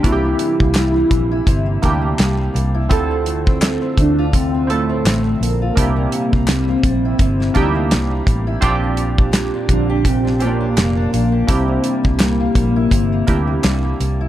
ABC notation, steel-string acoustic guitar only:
X:1
M:4/4
L:1/16
Q:"Swing 16ths" 1/4=84
K:Cmix
V:1 name="Steel-string acoustic guitar"
C, B, G, B, G, B, G, E C, B, G, B, G, B, G, E | D, C A, C A, C A, F D, C A, C A, C2 F | C, B, G, B, G, B, G, E C, B, G, B, G, B, G, E | B,, D B, D B, D B, G B,, D B, D B, D B, G |
C, B, G, B, G, B, G, E C, B, G, B, G, B, G, E |]